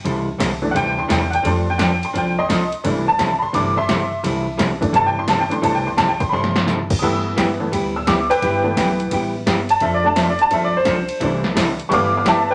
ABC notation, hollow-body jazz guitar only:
X:1
M:4/4
L:1/16
Q:"Swing" 1/4=172
K:C
V:1 name="Hollow-body jazz guitar"
[C,E,G,CEA]2 z2 [C,E,G,CEA] z3 [C,E,G,CEA]2 z2 [C,E,G,CEA] z3 | [F,CDA]2 z2 [F,CDA] z3 [F,CDA]2 z2 [F,CDA] z3 | [C,E,G,CEA]2 z2 [C,E,G,CEA] z3 [C,E,G,CEA]2 z2 [C,E,G,CEA] z3 | [C,E,G,CEA]2 z2 [C,E,G,CEA] z3 [C,E,G,CEA]2 z2 [C,E,G,CEA] z3 |
[C,E,G,CEA]2 z2 [C,E,G,CEA] z3 [C,E,G,CEA]2 z2 [C,E,G,CEA] z3 | [G,B,EG]2 z2 [G,B,EG] z3 [G,B,EG]2 z2 [G,B,EG] z3 | [G,B,EG]2 z2 [G,B,EG] z3 [G,B,EG]2 z2 [G,B,EG] z3 | [F,CDA]2 z2 [F,CDA] z3 [F,CDA]2 z2 [F,CDA] z3 |
[C,E,G,CEA]2 z2 [C,E,G,CEA] z3 [G,B,EG]2 z2 [G,B,EG] z3 |]